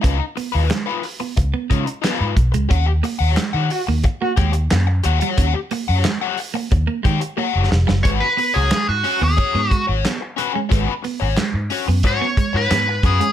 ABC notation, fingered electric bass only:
X:1
M:4/4
L:1/16
Q:1/4=90
K:G#dor
V:1 name="Fingered electric bass" clef=bass
C,, z2 D,, z4 C,, z C, z2 G,, B,,, C,, | D,,2 z D,, z D, z D,, z2 D,,2 F,,2 D,, z | D,, z2 F,, z4 D,, z D, z2 F,,, E,,, F,,, | G,,, z2 C,, z G,, z D,, z G,, z G,,, z4 |
G,,, z2 G,,, z G,, z F,, G,, z2 G,, G,,2 F,, z |]